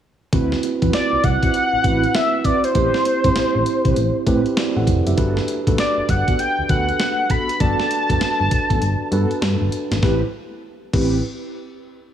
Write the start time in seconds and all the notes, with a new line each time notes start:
0.32 D2 C4 E4 F#4 B4, kick, closed hi-hat
0.52 snare
0.63 closed hi-hat
0.82 E2 C4 E4 F4 F#4 B4, kick, closed hi-hat
0.90 F#4, snare, closed hi-hat
0.94 D5
1.13 C2
1.24 C2 F#5, kick, closed hi-hat
1.42 C4 E4 F#4 B4, kick, closed hi-hat
1.54 closed hi-hat
1.73 A1
1.84 A1 C4 E4 F#4 B4, kick, closed hi-hat
2.04 closed hi-hat
2.15 E5, snare, closed hi-hat
2.44 C4 E4 F#4 B4 D5, kick, closed hi-hat
2.64 C5, closed hi-hat
2.75 A1 B3 C4 E4 G4 B4 C5, kick, closed hi-hat
2.81 C4
2.94 snare
3.05 closed hi-hat
3.24 G1 C4 E4 G4 B4 C5, kick, closed hi-hat
3.36 A1, snare, closed hi-hat
3.55 A1
3.66 closed hi-hat
3.85 C2 C4 G4 B4, kick, closed hi-hat
3.96 A1, closed hi-hat
4.26 A2 C4 E4 G4 B4, kick, closed hi-hat
4.46 closed hi-hat
4.57 F#4 D5, snare, closed hi-hat
4.76 A1 A4 F#5
4.87 F1, kick, closed hi-hat
5.07 F#1 G4 E5, closed hi-hat
5.17 G1 B3 D4 F#4 A4 B4, kick, closed hi-hat
5.37 snare
5.48 closed hi-hat
5.67 A1 B3 D4 F#4 A4 B4, kick, closed hi-hat
5.78 D5, snare, closed hi-hat
5.97 G1
6.09 G1 F#5, kick, closed hi-hat
6.28 B3 F#4 A4, kick, closed hi-hat
6.39 G5, closed hi-hat
6.58 D2
6.69 D2 B3 D4 F#4 A4 B4 F#5, kick, closed hi-hat
6.89 closed hi-hat
7.00 snare, closed hi-hat
7.30 B3 F#4 A4 B5, kick, closed hi-hat
7.49 closed hi-hat
7.60 G1 B3 D4 F#4 A4 D5 A5, kick, closed hi-hat
7.80 snare
7.91 closed hi-hat
8.09 F#1 B3 D4 F#4 A4 B4, kick, closed hi-hat
8.21 G1, snare, closed hi-hat
8.40 G1
8.51 kick, closed hi-hat
8.70 A1 B3 F#4 A4, kick, closed hi-hat
8.81 G1, closed hi-hat
9.11 G2 B3 D4 F#4 A4 B4, closed hi-hat
9.31 closed hi-hat
9.42 G2, snare, closed hi-hat
9.61 G1
9.72 closed hi-hat
9.91 G#1, snare, closed hi-hat
10.02 A1 C4 E4 G4 B4, kick, snare
10.93 A1 C4 E4 G4 B4, kick, crash